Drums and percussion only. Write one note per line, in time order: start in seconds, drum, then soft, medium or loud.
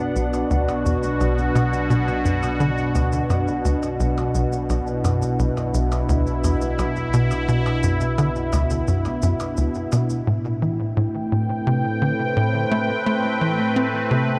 0.16 cabasa medium
0.33 cabasa medium
0.33 percussion blips soft
0.51 cabasa soft
0.69 cabasa soft
0.69 percussion blips medium
0.86 cabasa medium
1.03 cabasa medium
1.21 cabasa medium
1.21 percussion blips soft
1.38 cabasa soft
1.56 cabasa medium
1.56 percussion blips medium
1.73 cabasa soft
1.91 cabasa soft
2.08 cabasa soft
2.08 percussion blips soft
2.26 cabasa medium
2.43 cabasa soft
2.43 percussion blips medium
2.60 cabasa soft
2.78 cabasa soft
2.95 cabasa medium
2.95 percussion blips soft
3.13 cabasa soft
3.30 cabasa soft
3.30 percussion blips medium
3.48 cabasa soft
3.65 cabasa medium
3.83 cabasa soft
3.83 percussion blips soft
4.00 cabasa medium
4.18 cabasa soft
4.18 percussion blips medium
4.35 cabasa medium
4.53 cabasa soft
4.70 cabasa soft
4.70 percussion blips soft
4.87 cabasa soft
5.05 cabasa medium
5.05 percussion blips medium
5.22 cabasa soft
5.40 cabasa soft
5.57 cabasa soft
5.57 percussion blips soft
5.74 cabasa medium
5.92 cabasa soft
5.92 percussion blips medium
6.09 cabasa soft
6.27 cabasa soft
6.44 cabasa medium
6.44 percussion blips soft
6.61 cabasa soft
6.79 cabasa soft
6.79 percussion blips medium
6.96 cabasa soft
7.14 cabasa medium
7.31 cabasa soft
7.31 percussion blips soft
7.49 cabasa soft
7.66 cabasa soft
7.66 percussion blips medium
7.83 cabasa medium
8.01 cabasa soft
8.18 cabasa soft
8.18 percussion blips soft
8.36 cabasa soft
8.53 cabasa medium
8.53 percussion blips medium
8.70 cabasa soft
8.88 cabasa soft
9.05 cabasa soft
9.05 percussion blips soft
9.22 cabasa medium
9.40 cabasa soft
9.40 percussion blips medium
9.57 cabasa soft
9.75 cabasa soft
9.92 cabasa medium
9.92 percussion blips soft
10.10 cabasa soft